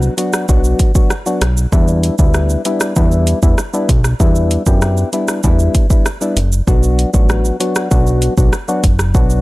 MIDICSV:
0, 0, Header, 1, 4, 480
1, 0, Start_track
1, 0, Key_signature, 1, "minor"
1, 0, Tempo, 618557
1, 1339, Time_signature, 4, 2, 24, 8
1, 7304, End_track
2, 0, Start_track
2, 0, Title_t, "Synth stab"
2, 0, Program_c, 0, 62
2, 0, Note_on_c, 0, 54, 74
2, 0, Note_on_c, 0, 59, 71
2, 0, Note_on_c, 0, 62, 68
2, 0, Note_on_c, 0, 66, 86
2, 108, Note_off_c, 0, 54, 0
2, 109, Note_off_c, 0, 59, 0
2, 110, Note_off_c, 0, 62, 0
2, 111, Note_off_c, 0, 66, 0
2, 135, Note_on_c, 0, 54, 72
2, 137, Note_on_c, 0, 59, 70
2, 139, Note_on_c, 0, 62, 66
2, 140, Note_on_c, 0, 66, 84
2, 358, Note_off_c, 0, 54, 0
2, 359, Note_off_c, 0, 59, 0
2, 360, Note_off_c, 0, 62, 0
2, 360, Note_off_c, 0, 66, 0
2, 377, Note_on_c, 0, 54, 94
2, 378, Note_on_c, 0, 59, 86
2, 380, Note_on_c, 0, 62, 90
2, 381, Note_on_c, 0, 66, 108
2, 709, Note_off_c, 0, 54, 0
2, 709, Note_off_c, 0, 59, 0
2, 711, Note_off_c, 0, 62, 0
2, 711, Note_off_c, 0, 66, 0
2, 737, Note_on_c, 0, 54, 73
2, 738, Note_on_c, 0, 59, 72
2, 740, Note_on_c, 0, 62, 68
2, 742, Note_on_c, 0, 66, 81
2, 874, Note_off_c, 0, 54, 0
2, 874, Note_off_c, 0, 59, 0
2, 875, Note_off_c, 0, 62, 0
2, 876, Note_off_c, 0, 66, 0
2, 978, Note_on_c, 0, 54, 75
2, 979, Note_on_c, 0, 59, 68
2, 980, Note_on_c, 0, 62, 68
2, 982, Note_on_c, 0, 66, 80
2, 1114, Note_off_c, 0, 54, 0
2, 1114, Note_off_c, 0, 59, 0
2, 1115, Note_off_c, 0, 62, 0
2, 1116, Note_off_c, 0, 66, 0
2, 1336, Note_on_c, 0, 55, 95
2, 1338, Note_on_c, 0, 59, 88
2, 1340, Note_on_c, 0, 62, 88
2, 1340, Note_on_c, 0, 64, 107
2, 1668, Note_off_c, 0, 55, 0
2, 1669, Note_off_c, 0, 59, 0
2, 1670, Note_off_c, 0, 62, 0
2, 1671, Note_off_c, 0, 64, 0
2, 1698, Note_on_c, 0, 55, 77
2, 1699, Note_on_c, 0, 59, 72
2, 1701, Note_on_c, 0, 62, 70
2, 1702, Note_on_c, 0, 64, 88
2, 2029, Note_off_c, 0, 55, 0
2, 2030, Note_off_c, 0, 59, 0
2, 2031, Note_off_c, 0, 62, 0
2, 2032, Note_off_c, 0, 64, 0
2, 2059, Note_on_c, 0, 55, 76
2, 2061, Note_on_c, 0, 59, 68
2, 2062, Note_on_c, 0, 62, 68
2, 2063, Note_on_c, 0, 64, 84
2, 2280, Note_off_c, 0, 55, 0
2, 2281, Note_off_c, 0, 59, 0
2, 2281, Note_off_c, 0, 62, 0
2, 2282, Note_off_c, 0, 64, 0
2, 2299, Note_on_c, 0, 55, 91
2, 2301, Note_on_c, 0, 59, 86
2, 2302, Note_on_c, 0, 62, 83
2, 2304, Note_on_c, 0, 64, 103
2, 2630, Note_off_c, 0, 55, 0
2, 2631, Note_off_c, 0, 59, 0
2, 2632, Note_off_c, 0, 62, 0
2, 2632, Note_off_c, 0, 64, 0
2, 2659, Note_on_c, 0, 55, 77
2, 2661, Note_on_c, 0, 59, 70
2, 2662, Note_on_c, 0, 62, 66
2, 2664, Note_on_c, 0, 64, 86
2, 2795, Note_off_c, 0, 55, 0
2, 2795, Note_off_c, 0, 59, 0
2, 2796, Note_off_c, 0, 62, 0
2, 2797, Note_off_c, 0, 64, 0
2, 2899, Note_on_c, 0, 55, 75
2, 2899, Note_on_c, 0, 59, 67
2, 2901, Note_on_c, 0, 62, 69
2, 2902, Note_on_c, 0, 64, 81
2, 3035, Note_off_c, 0, 55, 0
2, 3035, Note_off_c, 0, 59, 0
2, 3036, Note_off_c, 0, 62, 0
2, 3036, Note_off_c, 0, 64, 0
2, 3258, Note_on_c, 0, 55, 94
2, 3260, Note_on_c, 0, 59, 85
2, 3261, Note_on_c, 0, 62, 87
2, 3262, Note_on_c, 0, 64, 104
2, 3589, Note_off_c, 0, 55, 0
2, 3590, Note_off_c, 0, 59, 0
2, 3591, Note_off_c, 0, 62, 0
2, 3592, Note_off_c, 0, 64, 0
2, 3620, Note_on_c, 0, 67, 80
2, 3622, Note_on_c, 0, 59, 72
2, 3624, Note_on_c, 0, 62, 69
2, 3626, Note_on_c, 0, 64, 83
2, 3951, Note_off_c, 0, 67, 0
2, 3952, Note_off_c, 0, 59, 0
2, 3953, Note_off_c, 0, 62, 0
2, 3954, Note_off_c, 0, 64, 0
2, 3978, Note_on_c, 0, 55, 77
2, 3980, Note_on_c, 0, 59, 70
2, 3982, Note_on_c, 0, 62, 71
2, 3984, Note_on_c, 0, 64, 85
2, 4199, Note_off_c, 0, 55, 0
2, 4200, Note_off_c, 0, 59, 0
2, 4201, Note_off_c, 0, 62, 0
2, 4202, Note_off_c, 0, 64, 0
2, 4219, Note_on_c, 0, 55, 96
2, 4221, Note_on_c, 0, 59, 86
2, 4222, Note_on_c, 0, 62, 86
2, 4224, Note_on_c, 0, 64, 107
2, 4550, Note_off_c, 0, 55, 0
2, 4551, Note_off_c, 0, 59, 0
2, 4552, Note_off_c, 0, 62, 0
2, 4552, Note_off_c, 0, 64, 0
2, 4577, Note_on_c, 0, 55, 73
2, 4579, Note_on_c, 0, 59, 68
2, 4580, Note_on_c, 0, 62, 67
2, 4582, Note_on_c, 0, 64, 81
2, 4714, Note_off_c, 0, 55, 0
2, 4715, Note_off_c, 0, 59, 0
2, 4715, Note_off_c, 0, 62, 0
2, 4716, Note_off_c, 0, 64, 0
2, 4819, Note_on_c, 0, 55, 75
2, 4821, Note_on_c, 0, 59, 70
2, 4822, Note_on_c, 0, 62, 68
2, 4824, Note_on_c, 0, 64, 81
2, 4955, Note_off_c, 0, 55, 0
2, 4956, Note_off_c, 0, 59, 0
2, 4956, Note_off_c, 0, 62, 0
2, 4957, Note_off_c, 0, 64, 0
2, 5178, Note_on_c, 0, 54, 91
2, 5179, Note_on_c, 0, 59, 90
2, 5180, Note_on_c, 0, 62, 88
2, 5183, Note_on_c, 0, 66, 107
2, 5509, Note_off_c, 0, 54, 0
2, 5510, Note_off_c, 0, 59, 0
2, 5511, Note_off_c, 0, 62, 0
2, 5512, Note_off_c, 0, 66, 0
2, 5536, Note_on_c, 0, 54, 79
2, 5538, Note_on_c, 0, 59, 75
2, 5539, Note_on_c, 0, 62, 72
2, 5541, Note_on_c, 0, 66, 85
2, 5869, Note_off_c, 0, 54, 0
2, 5869, Note_off_c, 0, 59, 0
2, 5870, Note_off_c, 0, 62, 0
2, 5871, Note_off_c, 0, 66, 0
2, 5897, Note_on_c, 0, 54, 75
2, 5898, Note_on_c, 0, 59, 70
2, 5900, Note_on_c, 0, 62, 67
2, 5902, Note_on_c, 0, 66, 80
2, 6119, Note_off_c, 0, 54, 0
2, 6119, Note_off_c, 0, 59, 0
2, 6120, Note_off_c, 0, 62, 0
2, 6121, Note_off_c, 0, 66, 0
2, 6136, Note_on_c, 0, 54, 95
2, 6137, Note_on_c, 0, 59, 87
2, 6139, Note_on_c, 0, 62, 91
2, 6140, Note_on_c, 0, 66, 110
2, 6469, Note_off_c, 0, 54, 0
2, 6469, Note_off_c, 0, 59, 0
2, 6470, Note_off_c, 0, 62, 0
2, 6471, Note_off_c, 0, 66, 0
2, 6499, Note_on_c, 0, 54, 72
2, 6501, Note_on_c, 0, 59, 68
2, 6502, Note_on_c, 0, 62, 67
2, 6504, Note_on_c, 0, 66, 84
2, 6635, Note_off_c, 0, 54, 0
2, 6635, Note_off_c, 0, 59, 0
2, 6636, Note_off_c, 0, 62, 0
2, 6637, Note_off_c, 0, 66, 0
2, 6737, Note_on_c, 0, 54, 77
2, 6739, Note_on_c, 0, 59, 70
2, 6741, Note_on_c, 0, 62, 71
2, 6741, Note_on_c, 0, 66, 86
2, 6874, Note_off_c, 0, 54, 0
2, 6874, Note_off_c, 0, 59, 0
2, 6875, Note_off_c, 0, 62, 0
2, 6876, Note_off_c, 0, 66, 0
2, 7097, Note_on_c, 0, 54, 94
2, 7099, Note_on_c, 0, 59, 88
2, 7101, Note_on_c, 0, 62, 88
2, 7103, Note_on_c, 0, 66, 102
2, 7304, Note_off_c, 0, 54, 0
2, 7304, Note_off_c, 0, 59, 0
2, 7304, Note_off_c, 0, 62, 0
2, 7304, Note_off_c, 0, 66, 0
2, 7304, End_track
3, 0, Start_track
3, 0, Title_t, "Analog synth bass"
3, 0, Program_c, 1, 38
3, 380, Note_on_c, 1, 35, 110
3, 576, Note_off_c, 1, 35, 0
3, 1097, Note_on_c, 1, 35, 90
3, 1294, Note_off_c, 1, 35, 0
3, 1339, Note_on_c, 1, 40, 110
3, 1633, Note_off_c, 1, 40, 0
3, 1699, Note_on_c, 1, 38, 89
3, 1993, Note_off_c, 1, 38, 0
3, 2301, Note_on_c, 1, 40, 99
3, 2594, Note_off_c, 1, 40, 0
3, 2659, Note_on_c, 1, 40, 97
3, 2757, Note_off_c, 1, 40, 0
3, 3019, Note_on_c, 1, 35, 96
3, 3215, Note_off_c, 1, 35, 0
3, 3260, Note_on_c, 1, 40, 99
3, 3553, Note_off_c, 1, 40, 0
3, 3620, Note_on_c, 1, 42, 87
3, 3913, Note_off_c, 1, 42, 0
3, 4222, Note_on_c, 1, 40, 112
3, 4417, Note_off_c, 1, 40, 0
3, 4938, Note_on_c, 1, 30, 94
3, 5134, Note_off_c, 1, 30, 0
3, 5180, Note_on_c, 1, 35, 105
3, 5473, Note_off_c, 1, 35, 0
3, 5541, Note_on_c, 1, 33, 78
3, 5834, Note_off_c, 1, 33, 0
3, 6141, Note_on_c, 1, 35, 99
3, 6434, Note_off_c, 1, 35, 0
3, 6500, Note_on_c, 1, 35, 95
3, 6597, Note_off_c, 1, 35, 0
3, 6858, Note_on_c, 1, 30, 95
3, 7098, Note_on_c, 1, 35, 114
3, 7110, Note_off_c, 1, 30, 0
3, 7304, Note_off_c, 1, 35, 0
3, 7304, End_track
4, 0, Start_track
4, 0, Title_t, "Drums"
4, 18, Note_on_c, 9, 82, 50
4, 95, Note_off_c, 9, 82, 0
4, 139, Note_on_c, 9, 42, 70
4, 139, Note_on_c, 9, 82, 52
4, 216, Note_off_c, 9, 42, 0
4, 216, Note_off_c, 9, 82, 0
4, 257, Note_on_c, 9, 82, 86
4, 260, Note_on_c, 9, 37, 93
4, 334, Note_off_c, 9, 82, 0
4, 338, Note_off_c, 9, 37, 0
4, 378, Note_on_c, 9, 82, 82
4, 380, Note_on_c, 9, 36, 101
4, 455, Note_off_c, 9, 82, 0
4, 458, Note_off_c, 9, 36, 0
4, 498, Note_on_c, 9, 82, 58
4, 576, Note_off_c, 9, 82, 0
4, 616, Note_on_c, 9, 42, 72
4, 616, Note_on_c, 9, 82, 55
4, 618, Note_on_c, 9, 36, 80
4, 693, Note_off_c, 9, 42, 0
4, 693, Note_off_c, 9, 82, 0
4, 695, Note_off_c, 9, 36, 0
4, 737, Note_on_c, 9, 82, 80
4, 739, Note_on_c, 9, 36, 97
4, 815, Note_off_c, 9, 82, 0
4, 817, Note_off_c, 9, 36, 0
4, 857, Note_on_c, 9, 37, 90
4, 857, Note_on_c, 9, 82, 73
4, 934, Note_off_c, 9, 37, 0
4, 935, Note_off_c, 9, 82, 0
4, 979, Note_on_c, 9, 82, 57
4, 1057, Note_off_c, 9, 82, 0
4, 1098, Note_on_c, 9, 42, 80
4, 1098, Note_on_c, 9, 82, 57
4, 1100, Note_on_c, 9, 37, 100
4, 1176, Note_off_c, 9, 42, 0
4, 1176, Note_off_c, 9, 82, 0
4, 1178, Note_off_c, 9, 37, 0
4, 1220, Note_on_c, 9, 82, 85
4, 1298, Note_off_c, 9, 82, 0
4, 1339, Note_on_c, 9, 36, 120
4, 1339, Note_on_c, 9, 82, 70
4, 1416, Note_off_c, 9, 36, 0
4, 1417, Note_off_c, 9, 82, 0
4, 1457, Note_on_c, 9, 82, 56
4, 1535, Note_off_c, 9, 82, 0
4, 1579, Note_on_c, 9, 42, 63
4, 1579, Note_on_c, 9, 82, 45
4, 1656, Note_off_c, 9, 42, 0
4, 1656, Note_off_c, 9, 82, 0
4, 1696, Note_on_c, 9, 82, 78
4, 1699, Note_on_c, 9, 36, 97
4, 1773, Note_off_c, 9, 82, 0
4, 1777, Note_off_c, 9, 36, 0
4, 1816, Note_on_c, 9, 82, 64
4, 1819, Note_on_c, 9, 37, 86
4, 1893, Note_off_c, 9, 82, 0
4, 1897, Note_off_c, 9, 37, 0
4, 1937, Note_on_c, 9, 82, 49
4, 2014, Note_off_c, 9, 82, 0
4, 2057, Note_on_c, 9, 42, 70
4, 2057, Note_on_c, 9, 82, 50
4, 2135, Note_off_c, 9, 42, 0
4, 2135, Note_off_c, 9, 82, 0
4, 2176, Note_on_c, 9, 82, 91
4, 2179, Note_on_c, 9, 37, 95
4, 2253, Note_off_c, 9, 82, 0
4, 2257, Note_off_c, 9, 37, 0
4, 2297, Note_on_c, 9, 82, 85
4, 2300, Note_on_c, 9, 36, 96
4, 2374, Note_off_c, 9, 82, 0
4, 2378, Note_off_c, 9, 36, 0
4, 2418, Note_on_c, 9, 82, 57
4, 2496, Note_off_c, 9, 82, 0
4, 2537, Note_on_c, 9, 42, 70
4, 2537, Note_on_c, 9, 82, 51
4, 2615, Note_off_c, 9, 42, 0
4, 2615, Note_off_c, 9, 82, 0
4, 2658, Note_on_c, 9, 82, 75
4, 2660, Note_on_c, 9, 36, 94
4, 2736, Note_off_c, 9, 82, 0
4, 2737, Note_off_c, 9, 36, 0
4, 2778, Note_on_c, 9, 37, 89
4, 2779, Note_on_c, 9, 82, 72
4, 2856, Note_off_c, 9, 37, 0
4, 2856, Note_off_c, 9, 82, 0
4, 2900, Note_on_c, 9, 82, 60
4, 2977, Note_off_c, 9, 82, 0
4, 3019, Note_on_c, 9, 36, 98
4, 3019, Note_on_c, 9, 42, 80
4, 3019, Note_on_c, 9, 82, 55
4, 3096, Note_off_c, 9, 36, 0
4, 3097, Note_off_c, 9, 42, 0
4, 3097, Note_off_c, 9, 82, 0
4, 3138, Note_on_c, 9, 37, 89
4, 3139, Note_on_c, 9, 82, 84
4, 3216, Note_off_c, 9, 37, 0
4, 3217, Note_off_c, 9, 82, 0
4, 3259, Note_on_c, 9, 36, 117
4, 3259, Note_on_c, 9, 82, 69
4, 3337, Note_off_c, 9, 36, 0
4, 3337, Note_off_c, 9, 82, 0
4, 3379, Note_on_c, 9, 82, 58
4, 3457, Note_off_c, 9, 82, 0
4, 3499, Note_on_c, 9, 42, 64
4, 3499, Note_on_c, 9, 82, 44
4, 3577, Note_off_c, 9, 42, 0
4, 3577, Note_off_c, 9, 82, 0
4, 3618, Note_on_c, 9, 82, 80
4, 3620, Note_on_c, 9, 36, 91
4, 3695, Note_off_c, 9, 82, 0
4, 3698, Note_off_c, 9, 36, 0
4, 3738, Note_on_c, 9, 82, 61
4, 3742, Note_on_c, 9, 37, 85
4, 3816, Note_off_c, 9, 82, 0
4, 3819, Note_off_c, 9, 37, 0
4, 3859, Note_on_c, 9, 82, 50
4, 3937, Note_off_c, 9, 82, 0
4, 3980, Note_on_c, 9, 42, 71
4, 3980, Note_on_c, 9, 82, 51
4, 4058, Note_off_c, 9, 42, 0
4, 4058, Note_off_c, 9, 82, 0
4, 4097, Note_on_c, 9, 82, 85
4, 4101, Note_on_c, 9, 37, 87
4, 4175, Note_off_c, 9, 82, 0
4, 4178, Note_off_c, 9, 37, 0
4, 4217, Note_on_c, 9, 82, 84
4, 4221, Note_on_c, 9, 36, 97
4, 4295, Note_off_c, 9, 82, 0
4, 4299, Note_off_c, 9, 36, 0
4, 4340, Note_on_c, 9, 82, 58
4, 4418, Note_off_c, 9, 82, 0
4, 4459, Note_on_c, 9, 42, 74
4, 4459, Note_on_c, 9, 82, 53
4, 4460, Note_on_c, 9, 36, 82
4, 4537, Note_off_c, 9, 36, 0
4, 4537, Note_off_c, 9, 42, 0
4, 4537, Note_off_c, 9, 82, 0
4, 4580, Note_on_c, 9, 82, 77
4, 4581, Note_on_c, 9, 36, 96
4, 4657, Note_off_c, 9, 82, 0
4, 4658, Note_off_c, 9, 36, 0
4, 4701, Note_on_c, 9, 37, 89
4, 4701, Note_on_c, 9, 82, 75
4, 4778, Note_off_c, 9, 37, 0
4, 4779, Note_off_c, 9, 82, 0
4, 4821, Note_on_c, 9, 82, 56
4, 4899, Note_off_c, 9, 82, 0
4, 4941, Note_on_c, 9, 42, 76
4, 4941, Note_on_c, 9, 82, 54
4, 5018, Note_off_c, 9, 42, 0
4, 5018, Note_off_c, 9, 82, 0
4, 5062, Note_on_c, 9, 82, 86
4, 5139, Note_off_c, 9, 82, 0
4, 5180, Note_on_c, 9, 36, 121
4, 5182, Note_on_c, 9, 82, 74
4, 5258, Note_off_c, 9, 36, 0
4, 5260, Note_off_c, 9, 82, 0
4, 5300, Note_on_c, 9, 82, 58
4, 5378, Note_off_c, 9, 82, 0
4, 5423, Note_on_c, 9, 42, 63
4, 5423, Note_on_c, 9, 82, 44
4, 5500, Note_off_c, 9, 42, 0
4, 5500, Note_off_c, 9, 82, 0
4, 5539, Note_on_c, 9, 82, 80
4, 5541, Note_on_c, 9, 36, 89
4, 5617, Note_off_c, 9, 82, 0
4, 5619, Note_off_c, 9, 36, 0
4, 5659, Note_on_c, 9, 82, 61
4, 5663, Note_on_c, 9, 37, 90
4, 5737, Note_off_c, 9, 82, 0
4, 5740, Note_off_c, 9, 37, 0
4, 5780, Note_on_c, 9, 82, 51
4, 5858, Note_off_c, 9, 82, 0
4, 5901, Note_on_c, 9, 42, 71
4, 5901, Note_on_c, 9, 82, 51
4, 5979, Note_off_c, 9, 42, 0
4, 5979, Note_off_c, 9, 82, 0
4, 6018, Note_on_c, 9, 82, 87
4, 6022, Note_on_c, 9, 37, 92
4, 6096, Note_off_c, 9, 82, 0
4, 6099, Note_off_c, 9, 37, 0
4, 6140, Note_on_c, 9, 82, 84
4, 6142, Note_on_c, 9, 36, 92
4, 6218, Note_off_c, 9, 82, 0
4, 6219, Note_off_c, 9, 36, 0
4, 6261, Note_on_c, 9, 82, 55
4, 6338, Note_off_c, 9, 82, 0
4, 6378, Note_on_c, 9, 42, 70
4, 6378, Note_on_c, 9, 82, 53
4, 6455, Note_off_c, 9, 42, 0
4, 6455, Note_off_c, 9, 82, 0
4, 6499, Note_on_c, 9, 82, 79
4, 6500, Note_on_c, 9, 36, 96
4, 6577, Note_off_c, 9, 36, 0
4, 6577, Note_off_c, 9, 82, 0
4, 6617, Note_on_c, 9, 37, 89
4, 6618, Note_on_c, 9, 82, 74
4, 6695, Note_off_c, 9, 37, 0
4, 6696, Note_off_c, 9, 82, 0
4, 6739, Note_on_c, 9, 82, 60
4, 6817, Note_off_c, 9, 82, 0
4, 6857, Note_on_c, 9, 42, 76
4, 6857, Note_on_c, 9, 82, 56
4, 6858, Note_on_c, 9, 36, 97
4, 6935, Note_off_c, 9, 36, 0
4, 6935, Note_off_c, 9, 42, 0
4, 6935, Note_off_c, 9, 82, 0
4, 6977, Note_on_c, 9, 37, 93
4, 6979, Note_on_c, 9, 82, 82
4, 7055, Note_off_c, 9, 37, 0
4, 7056, Note_off_c, 9, 82, 0
4, 7097, Note_on_c, 9, 82, 75
4, 7098, Note_on_c, 9, 36, 120
4, 7174, Note_off_c, 9, 82, 0
4, 7176, Note_off_c, 9, 36, 0
4, 7216, Note_on_c, 9, 82, 56
4, 7294, Note_off_c, 9, 82, 0
4, 7304, End_track
0, 0, End_of_file